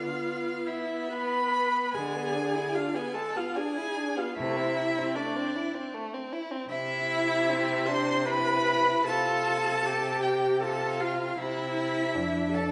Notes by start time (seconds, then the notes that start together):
Already playing: F4 F5
0.01 B3
0.22 B3
0.44 B3
0.66 B3 E4 E5
0.91 B3
1.11 B3 B4 B5
1.33 B3
1.54 B3
1.76 B3
1.94 D3 G#3 G#4 G#5
2.16 B3
2.35 D4
2.55 E4
2.74 D4 F4 F5
2.94 B3 G#4 G#5
3.14 G#3 A4 A5
3.35 B3 F4 F5
3.55 D4 G#4 G#5
3.77 E4
3.97 D4
4.17 B3 F4 F5
4.37 C3 A3 E4 E5
4.56 C4
4.76 E4
4.98 C4
5.14 A3 D4 D5
5.36 C4
5.56 E4
5.75 C4
5.94 A3
6.13 C4
6.33 E4
6.52 C4
6.68 C3 E4 E5
7.49 C4
7.85 D4 C5 C6
8.25 E4 B4 B5
9.04 C3 F4 A4 A5
9.86 G4
10.22 G4 G5
10.60 F4 A4 A5
11.00 F4 F5
11.38 C3 E4 E5
11.76 E4
12.14 F2 D4
12.52 A4 A5